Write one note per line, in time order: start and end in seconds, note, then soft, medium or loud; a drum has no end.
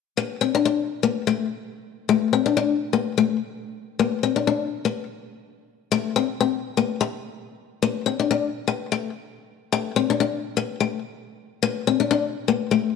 0.17 0.35 A#3 medium
0.41 0.51 C4 medium
0.55 0.63 D4 medium
0.65 0.83 D4 medium
1.03 1.21 A#3 medium
1.27 1.45 A3 medium
2.09 2.27 A3 medium
2.33 2.43 C4 medium
2.46 2.54 D4 medium
2.57 2.75 D4 medium
2.93 3.11 A#3 medium
3.18 3.36 A3 medium
3.99 4.18 A#3 medium
4.23 4.34 C4 medium
4.36 4.45 D4 medium
4.47 4.66 D4 medium
4.85 5.03 A#3 medium
5.92 6.10 A3 medium
6.16 6.26 C4 medium
6.40 6.58 C4 medium
6.77 6.95 A#3 medium
7.01 muted steel-string acoustic guitar stroke medium
7.82 8.00 A#3 medium
8.06 8.16 C4 medium
8.19 8.28 D4 medium
8.31 8.48 D4 medium
8.68 8.85 A#3 medium
8.92 9.09 A3 medium
9.72 9.91 A3 medium
9.96 10.06 C4 medium
10.10 10.18 D4 medium
10.20 10.38 D4 medium
10.57 10.75 A#3 medium
10.80 10.99 A3 medium
11.63 11.81 A#3 medium
11.87 11.97 C4 medium
12.00 12.08 D4 medium
12.11 12.29 D4 medium
12.48 12.66 A#3 medium
12.71 12.89 A3 medium